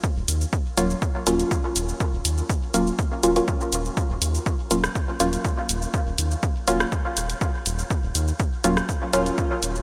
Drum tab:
HH |--x---x---xx--x-|--x---x---xx--x-|--x---x---xx--x-|--x---x---xx--x-|
SH |x-xxx-xxx-xxx-xx|x-xxx-xxx-xxxxxx|x-xxx-xxx-xxx-xx|x-xxx-xxx-xxx-xx|
SD |----------------|----------------|-------r--------|-------r--------|
BD |o---o---o---o---|o---o---o---o---|o---o---o---o---|o---o---o---o---|

HH |--x---x---xx--x-|
SH |x-xxx-xxx-xxx-xx|
SD |-------r--------|
BD |o---o---o---o---|